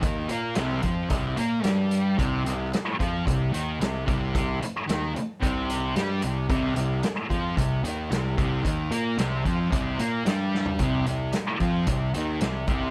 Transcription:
<<
  \new Staff \with { instrumentName = "Distorted electric guitar" } { \clef bass \time 4/4 \key c \minor \tempo 4 = 112 ees8 bes8 c8 f8 c8 bes8 g4 | c8 c8 r8 f8 c8 ees8 c8 c8~ | c8 r8 ees8 r8 c4 g8 c8 | c8 c8 r8 f8 c8 ees8 c8 c8 |
ees8 bes8 c8 f8 c8 bes8 g4 | c8 c8 r8 f8 c8 ees8 c8 c8 | }
  \new Staff \with { instrumentName = "Picked electric bass" } { \clef bass \time 4/4 \key c \minor ees,8 bes,8 c,8 f,8 c,8 bes,8 g,4 | c,8 c,8 r8 f,8 c,8 ees,8 c,8 c,8~ | c,8 r8 ees,8 r8 c,4 g,8 c,8 | c,8 c,8 r8 f,8 c,8 ees,8 c,8 c,8 |
ees,8 bes,8 c,8 f,8 c,8 bes,8 g,4 | c,8 c,8 r8 f,8 c,8 ees,8 c,8 c,8 | }
  \new DrumStaff \with { instrumentName = "Drums" } \drummode { \time 4/4 <hh bd>8 hh8 <hh sn>8 <hh bd>8 <hh bd>8 hh8 <hh sn>8 hh8 | <hh bd>8 hh8 <hh sn>8 <hh bd>8 <hh bd>8 hh8 <hh sn>8 <hh bd>8 | <hh bd>8 hh8 <hh sn>8 hh8 <hh bd>8 hh8 <hh sn>8 hh8 | <hh bd>8 hh8 <hh sn>8 <hh bd>8 <hh bd>8 hh8 <hh sn>8 <hh bd>8 |
<hh bd>8 hh8 <hh sn>8 <hh bd>8 <hh bd>8 hh8 <hh sn>8 sn16 tomfh16 | <hh bd>8 hh8 <hh sn>8 <hh bd>8 <hh bd>8 hh8 <hh sn>8 <hh bd>8 | }
>>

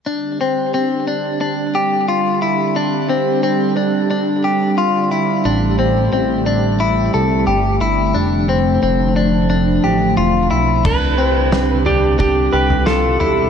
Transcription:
<<
  \new Staff \with { instrumentName = "Electric slide guitar" } { \time 4/4 \key c \major \tempo 4 = 89 r1 | r1 | r1 | r1 |
b'4. g'8 g'8 b'8 a'4 | }
  \new Staff \with { instrumentName = "Clean electric guitar" } { \time 4/4 \key c \major d'8 c'8 c'8 d'8 d'8 g'8 f'8 e'8 | d'8 c'8 c'8 d'8 d'8 g'8 f'8 e'8 | d'8 c'8 c'8 d'8 e'8 a'8 g'8 e'8 | d'8 c'8 c'8 d'8 d'8 g'8 f'8 e'8 |
d'8 c'8 c'8 d'8 d'8 g'8 f'8 e'8 | }
  \new Staff \with { instrumentName = "Ambient pad" } { \time 4/4 \key c \major << { <c' d' g'>1~ | <c' d' g'>1 | <a g'>1 | <a d'>1 |
<g d' g'>1 | } \\ { <d g>1~ | <d g>1~ | <d g>1 | <d f>1 |
<d c'>1 | } >> }
  \new Staff \with { instrumentName = "Analog synth bass" } { \clef bass \time 4/4 \key c \major r1 | r1 | a,,4 a,,4. c,8 g,,8 g,,8 | f,,4 f,,4. a,,8 e,,8 b,,8 |
c,2~ c,8 c,4 b,,8 | }
  \new DrumStaff \with { instrumentName = "Drums" } \drummode { \time 4/4 r4 r4 r4 r4 | r4 r4 r4 r4 | r4 r4 r4 r4 | r4 r4 r4 r4 |
<cymc bd tomfh>4 sn8 tomfh8 bd8. tomfh16 sn8 tomfh8 | }
>>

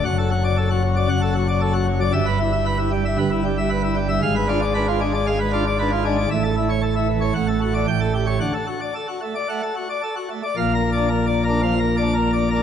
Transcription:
<<
  \new Staff \with { instrumentName = "Pipe organ" } { \time 4/4 \key d \major \tempo 4 = 115 << { fis''16 r2. r8. | e''16 r2. r8. | eis''16 r2. r8. | e''16 r4. r16 fis''16 r8. g''16 r8. |
fis''16 r2. r8. | \key bes \major f''8 r2. r8 | } \\ { r16 a'16 fis'16 d''16 a'16 fis'16 fis16 d''16 fis''16 a'16 fis'16 d''16 a'16 fis'16 fis16 d''16 | r16 b'16 e'16 e''16 b'16 e'16 g16 e''16 b'16 e'16 g16 e''16 b'16 e'16 g16 e''16 | r16 b'16 eis'16 d''16 b'16 eis'16 gis16 d''16 eis''16 b'16 eis'16 d''16 b'16 eis'16 gis16 d''16 | r16 a'16 e'16 cis''16 a'16 e'16 e16 cis''16 r16 a'16 fis'16 d''16 r16 a'16 g'16 cis''16 |
r16 a'16 fis'16 d''16 a'16 fis'16 a16 d''16 fis''16 a'16 fis'16 d''16 a'16 fis'16 a16 d''16 | \tuplet 3/2 { r8 bes'8 d''8 bes'8 d''8 bes'8 f''8 bes'8 d''8 bes'8 d''8 bes'8 } | } >> }
  \new Staff \with { instrumentName = "Pipe organ" } { \clef bass \time 4/4 \key d \major << { fis,2 fis,2 | g,2 g,2 | gis,8 d'16 r16 d'16 r16 d'16 r16 gis16 r16 d'16 r16 d'16 r16 d'16 r16 | a,2 a,4 a,4 |
d16 r4. r16 a16 r4. r16 | \key bes \major bes,8. d'16 r8. d'16 f16 r8 d'16 r8. d'16 | } \\ { fis,,2 fis,,2 | g,,2 g,,2 | gis,,1 | a,,2 a,,4 a,,4 |
d,16 r2. r8. | bes,,1 | } >> }
>>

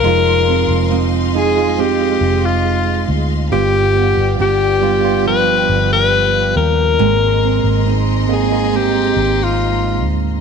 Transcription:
<<
  \new Staff \with { instrumentName = "String section" } { \time 4/4 \key g \phrygian \tempo 4 = 69 << { <aes ees'' c'''>1 | <g' d'' g''>1 | <aes ees'' c'''>1 | } \\ { f''1~ | f''1 | bes''1 | } >> }
  \new Staff \with { instrumentName = "Alto saxophone" } { \time 4/4 \key g \phrygian bes'4~ bes'16 r16 aes'8 g'8. f'8. r8 | g'4 g'4 b'8. b'8. bes'8~ | bes'4~ bes'16 r16 aes'8 g'8. f'8. r8 | }
  \new Staff \with { instrumentName = "Steel-string acoustic guitar" } { \time 4/4 \key g \phrygian f8 c'8 <c' ees'>8 ees'8 c'2 | g,8 b8 <b d' g'>8 d'8 f2 | aes8 c'8 <c' ees' bes'>8 ees'8 c'2 | }
  \new Staff \with { instrumentName = "Tine electric piano" } { \time 4/4 \key g \phrygian <aes ees' f'>4. <aes ees' aes'>16 <aes ees' f'>2 r16 | <g, g b f'>4. <g b f'>16 <g b f'>2 r16 | <aes, aes bes c'>4. <aes bes c'>16 <aes bes ees'>2 r16 | }
  \new Staff \with { instrumentName = "Fingered electric bass" } { \clef bass \time 4/4 \key g \phrygian f,,8. f,,4.~ f,,16 f,,4 d,8 | g,,8. g,,16 g,,4. g,,4 ees,8 | aes,,8. aes,,4.~ aes,,16 aes,,4 d,8 | }
>>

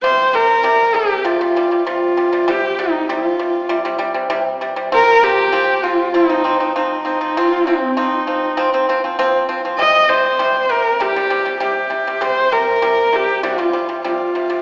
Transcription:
<<
  \new Staff \with { instrumentName = "Horsehead fiddle" } { \time 4/4 \tempo 4 = 99 c''8 bes'4 g'8 f'4 f'4 | g'8 ees'8 f'4. r4. | bes'8 g'4 f'8 ees'4 ees'4 | f'8 c'8 ees'4. r4. |
ees''8 c''4 bes'8 g'4 g'4 | c''8 bes'4 g'8 f'4 f'4 | }
  \new Staff \with { instrumentName = "Pipa" } { \clef bass \time 4/4 <c g>8 <c g>8 <c g>8 <c g>8 <c g>16 <c g>16 <c g>16 <c g>16 <c g>8 <c g>16 <c g>16 | <c g>8 <c g>8 <c g>8 <c g>8 <c g>16 <c g>16 <c g>16 <c g>16 <c g>8 <c g>16 <c g>16 | <f c'>8 <f c'>8 <f c'>8 <f c'>8 <f c'>16 <f c'>16 <f c'>16 <f c'>16 <f c'>8 <f c'>16 <f c'>16 | <f c'>8 <f c'>8 <f c'>8 <f c'>8 <f c'>16 <f c'>16 <f c'>16 <f c'>16 <f c'>8 <f c'>16 <f c'>16 |
<c g>8 <c g>8 <c g>8 <c g>8 <c g>16 <c g>16 <c g>16 <c g>16 <c g>8 <c g>16 <c g>16 | <c g>8 <c g>8 <c g>8 <c g>8 <c g>16 <c g>16 <c g>16 <c g>16 <c g>8 <c g>16 <c g>16 | }
>>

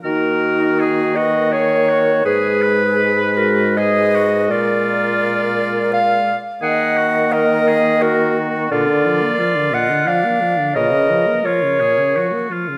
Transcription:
<<
  \new Staff \with { instrumentName = "Clarinet" } { \time 3/4 \key ees \minor \tempo 4 = 86 ges'4. ees''8 des''4 | ces''4. bes'8 ees''4 | d''2 f''8 r8 | ges''4 ees''4 bes'8 r8 |
d''4. ges''8 f''4 | ees''4 des''4. r8 | }
  \new Staff \with { instrumentName = "Flute" } { \time 3/4 \key ees \minor ees'4. ces''8 bes'4 | aes'4. ges'8 ces''4 | bes'2 d''8 r8 | ees''4 bes'4 ges'8 r8 |
bes'4. ees''8 d''4 | ces''4 bes'4. r8 | }
  \new Staff \with { instrumentName = "Oboe" } { \time 3/4 \key ees \minor bes'4 aes'8 ges'8 aes'8 ges'8 | aes'8 ces''4. aes'8 ges'8 | f'2~ f'8 r8 | aes'8 ges'8 bes'8 aes'8 ges'4 |
f'4 f'4 d'4 | bes'4 f'8 aes'8 ges'8 f'8 | }
  \new Staff \with { instrumentName = "French horn" } { \clef bass \time 3/4 \key ees \minor bes2. | aes2.~ | aes2~ aes8 r8 | bes2. |
bes,16 d16 f16 bes16 f16 d16 bes,16 d16 f16 bes16 f16 d16 | bes,16 des16 f16 bes16 f16 des16 bes,16 des16 f16 bes16 f16 des16 | }
  \new Staff \with { instrumentName = "Bassoon" } { \clef bass \time 3/4 \key ees \minor ees2. | aes,2. | bes,2~ bes,8 r8 | ees2. |
d4 r2 | des4 r2 | }
>>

